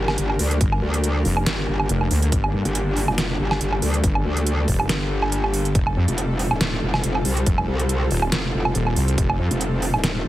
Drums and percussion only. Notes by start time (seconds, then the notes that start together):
0.08 snare, low woodblock
0.18 closed hi-hat
0.30 low woodblock
0.39 open hi-hat
0.51 closed hi-hat
0.61 kick, closed hi-hat
0.72 low woodblock
0.94 closed hi-hat
1.04 closed hi-hat
1.25 open hi-hat
1.37 low woodblock
1.46 snare, closed hi-hat
1.80 low woodblock
1.89 closed hi-hat
2.01 low woodblock
2.11 open hi-hat
2.22 closed hi-hat
2.32 kick, closed hi-hat
2.44 low woodblock
2.65 closed hi-hat
2.75 closed hi-hat
2.97 open hi-hat
3.08 low woodblock
3.18 snare, closed hi-hat
3.51 snare, low woodblock
3.61 closed hi-hat
3.72 low woodblock
3.82 open hi-hat
3.94 closed hi-hat
4.04 kick, closed hi-hat
4.15 low woodblock
4.37 closed hi-hat
4.47 closed hi-hat
4.68 kick, open hi-hat
4.80 low woodblock
4.89 snare, closed hi-hat
5.22 low woodblock
5.32 closed hi-hat
5.44 low woodblock
5.54 open hi-hat
5.65 closed hi-hat
5.75 kick, closed hi-hat
5.87 low woodblock
6.08 closed hi-hat
6.18 closed hi-hat
6.39 open hi-hat
6.51 low woodblock
6.61 snare, closed hi-hat
6.94 snare, low woodblock
7.04 closed hi-hat
7.15 low woodblock
7.25 open hi-hat
7.37 closed hi-hat
7.46 kick, closed hi-hat
7.58 low woodblock
7.79 closed hi-hat
7.89 closed hi-hat
8.11 open hi-hat
8.22 low woodblock
8.32 snare, closed hi-hat
8.65 low woodblock
8.75 closed hi-hat
8.87 low woodblock
8.96 open hi-hat
9.08 closed hi-hat
9.18 kick, closed hi-hat
9.30 low woodblock
9.51 closed hi-hat
9.61 closed hi-hat
9.82 open hi-hat
9.94 low woodblock
10.04 snare, closed hi-hat